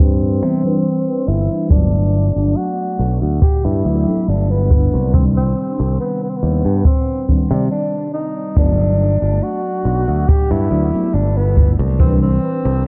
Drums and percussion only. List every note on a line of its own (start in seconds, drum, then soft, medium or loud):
0.00 kick loud
1.70 kick loud
3.42 kick loud
4.71 kick loud
5.14 kick loud
6.85 kick loud
7.29 kick medium
8.57 kick loud
10.29 kick loud
11.57 kick medium
12.00 kick loud